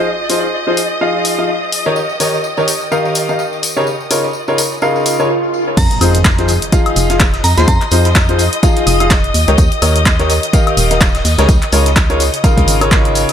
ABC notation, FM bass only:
X:1
M:4/4
L:1/16
Q:"Swing 16ths" 1/4=126
K:Fm
V:1 name="FM bass" clef=bass
z16 | z16 | z16 | F,, z F,,4- F,, z3 F,,,4 F,, E,, |
F,, z F,,4- F,, z3 F,,,4 E,, D,, | E,, z E,,4- E,, z3 E,,,4 E,, D,, | D,, z D,,4- D,, z2 D,, A,,,4- A,,, z |]